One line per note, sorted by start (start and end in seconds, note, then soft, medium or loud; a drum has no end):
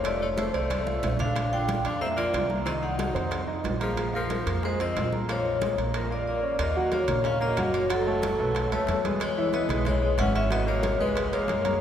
0.00 0.48 F1 medium
0.04 0.32 F3 medium
0.04 0.20 A3 medium
0.04 0.32 F4 medium
0.04 0.22 D5 loud
0.04 high bongo medium
0.04 high conga soft
0.04 high timbale medium
0.21 0.29 A3 medium
0.21 0.30 C#5 medium
0.21 high bongo soft
0.21 high conga soft
0.37 0.51 A3 medium
0.37 0.53 A3 medium
0.37 0.51 A4 medium
0.37 0.55 C5 medium
0.37 high bongo medium
0.37 high conga medium
0.37 high timbale medium
0.37 low timbale medium
0.53 0.99 C2 medium
0.53 1.16 A3 medium
0.53 0.80 C4 medium
0.53 0.81 C5 medium
0.53 1.16 D5 medium
0.53 high bongo soft
0.53 high conga soft
0.53 high timbale medium
0.70 high bongo medium
0.70 high conga medium
0.70 high timbale medium
0.87 1.13 F4 medium
0.87 1.14 F5 medium
0.87 high conga medium
1.03 1.79 A#1 medium
1.03 high bongo soft
1.03 low bongo medium
1.03 low conga medium
1.03 high timbale medium
1.03 low timbale medium
1.19 1.50 D4 medium
1.19 1.46 D4 medium
1.19 1.47 D5 medium
1.19 1.50 F5 loud
1.19 high bongo soft
1.19 low conga medium
1.19 high timbale medium
1.36 high bongo medium
1.36 high conga soft
1.36 high timbale medium
1.52 1.83 D4 medium
1.52 1.79 F4 medium
1.52 1.79 F5 medium
1.52 1.83 G5 medium
1.52 high bongo soft
1.52 high conga soft
1.68 high bongo medium
1.68 high conga medium
1.68 high timbale medium
1.68 low timbale medium
1.84 2.30 F2 medium
1.84 1.98 D4 medium
1.84 2.00 D4 medium
1.84 1.99 D5 medium
1.84 2.01 F5 medium
1.84 high bongo soft
1.84 high conga soft
1.84 high timbale medium
2.01 2.15 A#3 medium
2.01 2.09 C4 medium
2.01 2.15 A#4 medium
2.01 2.09 E5 medium
2.01 high bongo medium
2.01 high conga soft
2.17 2.44 F3 medium
2.17 2.48 A#3 medium
2.17 2.45 F4 medium
2.17 2.48 D5 medium
2.17 high conga soft
2.17 high timbale medium
2.33 3.10 C2 medium
2.33 high bongo soft
2.33 low bongo medium
2.33 high conga medium
2.33 high timbale medium
2.33 low timbale medium
2.50 2.64 A#3 medium
2.50 2.64 A#4 medium
2.50 high bongo soft
2.50 high conga medium
2.65 2.93 D#3 medium
2.65 2.73 C4 medium
2.65 2.93 D#4 medium
2.65 2.74 D#5 loud
2.65 high bongo medium
2.65 high conga soft
2.65 high timbale medium
2.82 3.44 D#4 medium
2.82 3.44 F#5 medium
2.82 high bongo soft
2.82 high conga soft
2.98 3.12 F#3 medium
2.98 3.12 F#4 medium
2.98 high bongo medium
2.98 high conga medium
2.98 high timbale medium
2.98 low timbale medium
3.15 3.61 F2 medium
3.15 3.42 C4 medium
3.15 3.42 C5 medium
3.15 high bongo soft
3.15 high conga soft
3.15 high timbale medium
3.31 high bongo medium
3.31 high conga soft
3.31 high timbale medium
3.47 3.75 D#4 medium
3.47 3.75 D#5 medium
3.47 high conga soft
3.64 4.41 A#1 medium
3.64 high bongo soft
3.64 low bongo medium
3.64 high conga medium
3.64 high timbale medium
3.64 low timbale medium
3.80 4.12 F3 medium
3.80 4.07 A#3 medium
3.80 4.15 G#4 medium
3.80 4.08 A#4 medium
3.80 high bongo soft
3.80 high conga medium
3.80 high timbale medium
3.97 high bongo medium
3.97 high conga soft
3.97 high timbale medium
4.13 4.61 F3 medium
4.13 4.40 F4 medium
4.13 4.65 A#4 medium
4.13 4.41 F5 medium
4.13 high bongo soft
4.13 high conga soft
4.30 high bongo medium
4.30 high conga medium
4.30 high timbale medium
4.30 low timbale medium
4.46 4.92 F2 medium
4.46 4.60 A#3 medium
4.46 4.60 A#4 medium
4.46 high bongo soft
4.46 high conga soft
4.46 high timbale medium
4.63 4.77 G#3 medium
4.63 4.79 G#3 medium
4.63 4.77 G#4 medium
4.63 4.81 C5 loud
4.63 high bongo medium
4.63 high conga soft
4.80 5.06 F3 medium
4.80 5.10 C4 medium
4.80 5.07 F4 medium
4.80 5.11 D#5 medium
4.80 high conga soft
4.80 high timbale medium
4.96 5.72 A#1 medium
4.96 high bongo soft
4.96 low bongo medium
4.96 high conga medium
4.96 high timbale medium
4.96 low timbale medium
5.12 5.26 A#3 medium
5.12 5.26 A#4 medium
5.12 high bongo soft
5.12 high conga medium
5.29 5.56 F3 medium
5.29 5.75 A#3 medium
5.29 5.56 F4 medium
5.29 5.76 C#5 loud
5.29 high bongo medium
5.29 high conga soft
5.29 high timbale medium
5.46 high bongo soft
5.46 high conga soft
5.61 5.75 G#3 medium
5.61 5.75 G#4 medium
5.61 high bongo medium
5.61 high conga medium
5.61 high timbale medium
5.61 low timbale medium
5.77 6.23 A#1 medium
5.77 6.05 A#3 medium
5.77 6.05 A#4 medium
5.77 high bongo soft
5.77 high conga soft
5.77 high timbale medium
5.94 6.10 F3 medium
5.94 6.41 A#4 medium
5.94 high bongo medium
5.94 high conga soft
5.94 high timbale medium
6.10 6.26 A#3 medium
6.10 6.37 F4 medium
6.10 6.26 D5 medium
6.10 6.37 F5 medium
6.10 high conga soft
6.27 6.58 A#3 medium
6.27 6.61 D5 medium
6.43 6.56 C#4 medium
6.43 6.57 C#5 medium
6.59 7.05 D#2 medium
6.59 6.90 A#3 medium
6.59 6.94 D#5 medium
6.59 high bongo medium
6.59 high conga soft
6.59 high timbale loud
6.76 7.03 F#3 medium
6.76 7.03 F#4 medium
6.76 7.03 F#5 medium
6.76 high bongo soft
6.76 high conga soft
6.92 7.23 A#3 medium
6.92 7.26 C#5 medium
6.92 high bongo medium
6.92 high conga medium
6.92 high timbale medium
7.08 7.54 A#1 medium
7.08 7.35 A#3 medium
7.08 7.35 A#4 medium
7.08 7.35 C#5 medium
7.08 high bongo soft
7.08 low conga medium
7.08 high timbale medium
7.24 7.40 C#4 medium
7.24 7.42 F5 medium
7.24 high bongo medium
7.24 high conga soft
7.24 high timbale medium
7.41 7.71 A#3 medium
7.41 7.54 A#3 medium
7.41 7.55 A#4 medium
7.41 7.55 C#5 medium
7.41 7.75 D#5 medium
7.41 high bongo soft
7.41 high conga soft
7.57 8.33 F#1 loud
7.57 7.84 F#3 medium
7.57 7.84 F#4 medium
7.57 7.84 F#5 medium
7.57 high bongo medium
7.57 low bongo medium
7.57 high conga medium
7.57 high timbale medium
7.74 7.89 A#3 medium
7.74 7.90 C#5 medium
7.74 high timbale medium
7.90 8.03 F#3 medium
7.90 8.68 F#3 medium
7.90 8.03 F#4 medium
7.90 8.68 A4 medium
7.90 8.04 F#5 medium
7.90 high bongo medium
7.90 high conga soft
7.90 high timbale loud
8.06 8.33 A3 medium
8.06 8.34 A4 medium
8.06 8.34 C#5 medium
8.06 high bongo soft
8.06 high conga soft
8.22 high bongo medium
8.22 high conga loud
8.22 high timbale medium
8.39 8.69 B1 medium
8.39 8.66 A3 medium
8.39 8.66 A4 medium
8.39 8.66 B4 medium
8.39 high bongo soft
8.55 high bongo medium
8.55 high conga soft
8.55 high timbale medium
8.72 8.87 C#2 medium
8.72 8.99 A3 medium
8.72 9.02 A3 medium
8.72 8.99 A4 medium
8.72 8.99 B4 medium
8.72 9.02 C#5 medium
8.72 high conga soft
8.72 high timbale medium
8.87 9.64 E2 loud
8.87 high bongo medium
8.87 low bongo medium
8.87 high conga medium
8.87 high timbale medium
9.04 9.31 G#3 medium
9.04 9.31 G#4 medium
9.04 9.31 B4 medium
9.04 high bongo soft
9.04 high conga medium
9.04 high timbale medium
9.20 9.51 G#3 medium
9.20 9.55 C#5 loud
9.20 high bongo medium
9.20 high conga soft
9.20 high timbale loud
9.36 9.64 E3 medium
9.36 9.64 E4 medium
9.36 9.64 E5 medium
9.36 high bongo soft
9.36 high conga soft
9.53 9.84 B3 medium
9.53 9.84 D#5 medium
9.53 high bongo medium
9.53 high conga medium
9.53 high timbale medium
9.69 10.15 B1 medium
9.69 9.96 G#3 medium
9.69 9.96 G#4 medium
9.69 9.96 B4 medium
9.69 high bongo soft
9.69 low conga medium
9.69 high timbale medium
9.85 10.17 G#3 medium
9.85 10.17 C#5 medium
9.85 high bongo medium
9.85 high conga soft
9.85 low conga medium
9.85 high timbale medium
10.01 10.15 G#3 medium
10.01 10.15 G#4 medium
10.01 10.15 B4 medium
10.01 high bongo soft
10.01 high conga soft
10.18 10.94 G#1 loud
10.18 10.45 E3 medium
10.18 10.34 C#4 medium
10.18 10.45 E4 medium
10.18 10.45 E5 medium
10.18 10.34 F#5 medium
10.18 high bongo medium
10.18 low bongo medium
10.18 high conga medium
10.18 high timbale loud
10.35 10.50 C#4 medium
10.35 10.52 E5 loud
10.35 high timbale medium
10.50 10.64 F#3 medium
10.50 10.66 B3 medium
10.50 10.64 F#4 medium
10.50 10.68 D#5 loud
10.50 10.64 F#5 medium
10.50 high bongo medium
10.50 high conga soft
10.50 high timbale medium
10.66 10.94 B2 medium
10.66 10.97 A#3 medium
10.66 10.94 A#4 medium
10.66 11.01 C#5 medium
10.66 10.94 D#5 medium
10.66 high bongo soft
10.66 high conga soft
10.83 high bongo medium
10.83 high conga loud
10.83 high timbale medium
10.99 11.30 C#2 medium
10.99 11.26 G#3 medium
10.99 11.31 G#3 medium
10.99 11.26 G#4 medium
10.99 11.27 B4 medium
10.99 11.34 B4 medium
10.99 high bongo soft
11.16 high bongo medium
11.16 high conga soft
11.16 high timbale medium
11.32 11.47 F2 medium
11.32 11.59 G#3 medium
11.32 11.79 A#3 medium
11.32 11.59 G#4 medium
11.32 11.59 A#4 medium
11.32 11.81 C#5 medium
11.32 high conga soft
11.32 high timbale medium
11.48 11.81 F#2 medium
11.48 high bongo medium
11.48 low bongo medium
11.48 high conga medium
11.48 high timbale medium
11.64 11.81 A#3 medium
11.64 11.81 A#4 medium
11.64 11.81 C#5 medium
11.64 high bongo soft
11.64 high conga medium
11.64 high timbale medium